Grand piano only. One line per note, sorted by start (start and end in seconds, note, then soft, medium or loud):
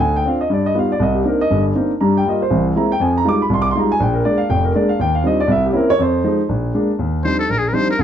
0.00 0.20 D2 medium
0.00 0.14 G#5 medium
0.16 0.25 G5 medium
0.25 0.40 C4 medium
0.25 0.40 D4 medium
0.25 0.41 F4 medium
0.25 0.40 F5 medium
0.41 0.50 D#5 medium
0.50 0.71 G2 medium
0.50 0.66 D5 medium
0.66 0.75 D#5 medium
0.74 0.90 G3 medium
0.74 0.90 B3 medium
0.74 0.90 D#4 medium
0.74 0.90 F4 medium
0.79 0.91 F5 medium
0.92 1.00 D5 medium
1.00 1.21 C2 medium
1.00 1.15 D#5 medium
1.15 1.24 G4 medium
1.24 1.40 A#3 medium
1.24 1.40 C4 medium
1.24 1.40 D4 medium
1.24 1.40 D#4 medium
1.28 1.40 A#4 medium
1.41 1.63 D#5 medium
1.50 1.71 G1 medium
1.50 1.71 G2 medium
1.75 1.90 A#3 medium
1.75 1.90 C4 medium
1.75 1.90 D4 medium
1.75 1.91 D#4 medium
2.01 2.21 G2 medium
2.01 2.21 G3 medium
2.01 2.14 A#5 medium
2.17 2.25 G5 medium
2.25 2.40 G3 medium
2.25 2.41 A#3 medium
2.25 2.41 F4 medium
2.25 2.41 D#5 medium
2.42 2.64 C5 medium
2.50 2.71 C2 medium
2.50 2.71 E3 medium
2.75 2.90 G#3 medium
2.75 2.90 A#3 soft
2.75 2.91 C4 medium
2.75 2.91 E4 medium
2.75 2.90 A#5 medium
2.92 3.00 G5 medium
3.00 3.21 F2 medium
3.00 3.21 F3 medium
3.00 3.14 G#5 medium
3.18 3.25 A#5 loud
3.24 3.40 G3 medium
3.24 3.40 G#3 medium
3.24 3.40 D#4 medium
3.24 3.40 F4 medium
3.29 3.40 D6 loud
3.42 3.50 B5 medium
3.49 3.70 C2 medium
3.54 3.59 C6 medium
3.62 3.67 D6 loud
3.71 3.90 G3 medium
3.71 3.76 C6 medium
3.75 3.90 G#3 medium
3.75 3.90 D#4 medium
3.75 3.91 F4 medium
3.75 3.91 A#5 medium
3.92 4.00 G#5 loud
4.00 4.21 A#1 medium
4.00 4.15 G5 medium
4.14 4.24 A#4 medium
4.25 4.40 G#3 medium
4.25 4.40 A#3 medium
4.25 4.40 D4 medium
4.25 4.39 D5 medium
4.38 4.48 F5 loud
4.50 4.70 F1 medium
4.50 4.64 G5 medium
4.65 4.74 A#4 medium
4.75 4.90 G#3 medium
4.75 4.90 A#3 medium
4.75 4.90 D4 medium
4.75 4.89 D5 medium
4.89 4.99 F5 medium
4.99 5.20 D#2 medium
4.99 5.14 G5 medium
5.15 5.24 F5 loud
5.23 5.39 G3 medium
5.23 5.39 C4 medium
5.23 5.40 D4 medium
5.23 5.39 D#4 medium
5.23 5.40 F4 medium
5.23 5.40 D#5 medium
5.40 5.49 D5 medium
5.47 5.69 C2 medium
5.47 5.48 D#5 medium
5.52 5.65 E5 medium
5.66 5.75 G4 medium
5.72 5.89 A#3 medium
5.72 5.89 C4 medium
5.72 5.89 C#4 medium
5.72 5.89 E4 medium
5.77 5.90 A#4 medium
5.90 5.99 C#5 loud
5.99 6.20 F2 medium
5.99 6.47 C5 medium
6.24 6.40 F3 medium
6.24 6.40 G#3 medium
6.24 6.40 D#4 medium
6.49 6.70 A#1 medium
6.74 6.90 G#3 medium
6.74 6.90 A#3 medium
6.74 6.90 D4 medium
6.99 7.20 D#2 medium
7.24 7.40 F3 soft
7.24 7.40 G3 soft
7.24 7.40 C4 soft
7.24 7.40 D4 soft
7.24 7.40 D#4 medium
7.49 7.71 A#1 medium
7.72 7.89 F3 medium
7.72 7.90 G3 medium
7.72 7.90 C4 soft
7.72 7.90 D4 medium
7.72 7.90 D#4 medium
7.99 8.04 D2 medium
7.99 8.04 D3 medium